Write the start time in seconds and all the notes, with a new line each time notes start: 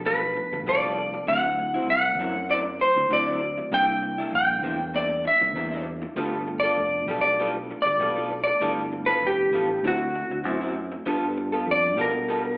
Already playing: B1 F3 A3 B3 D4
0.05 G3 B3 F4 A4 B4
0.22 muted clean electric guitar stroke
0.36 muted clean electric guitar stroke
0.52 G1, muted clean electric guitar stroke
0.66 C2 G3 B3 F4 A4 D5
0.83 B3 F4 A4
0.98 muted clean electric guitar stroke
1.14 muted clean electric guitar stroke
1.27 D2 D3 F#3 A3 C4 E4 F#5
1.59 muted clean electric guitar stroke
1.74 F#3 C4 E4
1.88 C2 F#5, muted clean electric guitar stroke
2.19 F#2 D3 F#3 C4 E4
2.36 muted clean electric guitar stroke
2.50 D3 F#3 C4 E4 D5
2.66 muted clean electric guitar stroke
2.80 C5, muted clean electric guitar stroke
2.96 D2, muted clean electric guitar stroke
3.10 D2 D3 F#3 A3 C4 E4 F#4 D5
3.26 F#3 C4 E4
3.41 muted clean electric guitar stroke
3.58 muted clean electric guitar stroke
3.71 C2 C3 G3 A#3 D4 E4 G5
4.02 muted clean electric guitar stroke
4.18 A#3 D4 E4
4.33 A#1 G5, muted clean electric guitar stroke
4.63 E2 C3 A#3 D4 E4
4.80 muted clean electric guitar stroke
4.94 C3 A#3 D4 E4 D5
5.11 muted clean electric guitar stroke
5.24 E5, muted clean electric guitar stroke
5.41 C2, muted clean electric guitar stroke
5.54 E2 C3 A#3 D4 E4
5.71 A#3 D4 E4
5.86 muted clean electric guitar stroke
6.02 muted clean electric guitar stroke
6.16 G1 G3 A3 B3 D4 F4 A4
6.47 muted clean electric guitar stroke
6.60 A4 D5
6.65 B3 F4
6.77 F1, muted clean electric guitar stroke
7.08 B1 G3 B3 F4 A4
7.21 D5
7.25 muted clean electric guitar stroke
7.40 G3 B3 F4 A4
7.56 muted clean electric guitar stroke
7.71 muted clean electric guitar stroke
7.82 G1 D5
7.86 muted clean electric guitar stroke
8.00 B1 G3 B3 F4 A4
8.16 B3 F4 A4
8.31 muted clean electric guitar stroke
8.44 D5, muted clean electric guitar stroke
8.60 G1 G3 A3 B3 D4 E4 F4 A4
8.92 muted clean electric guitar stroke
9.06 B3 F4 A4 B4
9.22 F1, muted clean electric guitar stroke
9.27 G4
9.53 A1 G3 B3 F4 A4
9.70 muted clean electric guitar stroke
9.83 D2 D3 F#3 A3 C4 E4 F#4
9.87 F#4
10.01 muted clean electric guitar stroke
10.15 muted clean electric guitar stroke
10.30 D2, muted clean electric guitar stroke
10.44 F#2 D3 F#3 C4 E4
10.61 F#3 C4 E4
10.76 muted clean electric guitar stroke
10.92 muted clean electric guitar stroke
11.06 G2 G3 B3 D4 F4 A4
11.37 muted clean electric guitar stroke
11.52 B3 F4 A4
11.67 F2, muted clean electric guitar stroke
11.71 D5
11.97 B2 G3 B3 F4 A4
12.01 A#4
12.15 muted clean electric guitar stroke
12.28 G3 B3 F4 A4
12.45 muted clean electric guitar stroke